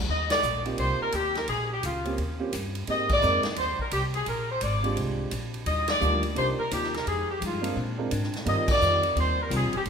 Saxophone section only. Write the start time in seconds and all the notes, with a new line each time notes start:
0.10 D#5
0.31 D5
0.79 C5
1.01 A#4
1.14 G4
1.37 A#4
1.49 G#4
1.72 G4
1.85 F4
2.90 D#5
3.12 D5
3.58 C5
3.81 A#4
3.93 G4
4.15 G#4
4.28 A#4
4.51 C5
4.62 D5
5.67 D#5
5.90 D5
6.38 C5
6.59 A#4
6.73 G4
6.95 A#4
7.07 G#4
7.30 G4
7.46 F4
8.49 D#5
8.72 D5
9.20 C5
9.42 A#4
9.56 G#4
9.77 G4